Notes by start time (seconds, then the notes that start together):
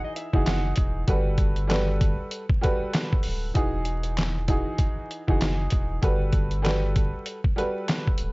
Already playing: E3 D#4 F#4 G#4
0.04 D#5
0.16 E5, closed hi-hat
0.33 F#1 E3 D#4 F#4 G#4, kick
0.46 F#1 F#5, snare, clap, closed hi-hat
0.76 E1, kick, closed hi-hat
1.07 G1 G3 F#4 A4 B4, kick, closed hi-hat
1.38 kick, closed hi-hat
1.56 closed hi-hat
1.67 G3 F#4 A4 B4, snare, clap, closed hi-hat
2.01 kick, closed hi-hat
2.31 closed hi-hat
2.49 kick
2.61 G3 F#4 A4 B4, kick, closed hi-hat
2.94 snare, clap, closed hi-hat
3.13 kick
3.23 D1, open hi-hat
3.54 E1 E3 D#4 F#4 G#4, kick, closed hi-hat
3.85 closed hi-hat
4.03 closed hi-hat
4.17 snare, clap, closed hi-hat
4.48 E3 D#4 F#4 G#4, kick, closed hi-hat
4.78 kick, closed hi-hat
5.11 closed hi-hat
5.27 F#1 E3 D#4 F#4 G#4, kick
5.41 F#1, snare, clap, closed hi-hat
5.70 E1, kick, closed hi-hat
6.02 G1 G3 F#4 A4 B4, kick, closed hi-hat
6.33 kick, closed hi-hat
6.51 closed hi-hat
6.62 G3 F#4 A4 B4, snare, clap, closed hi-hat
6.96 kick, closed hi-hat
7.26 closed hi-hat
7.44 kick
7.56 G3 F#4 A4 B4, closed hi-hat
7.88 snare, clap, closed hi-hat
8.07 kick
8.18 D1, closed hi-hat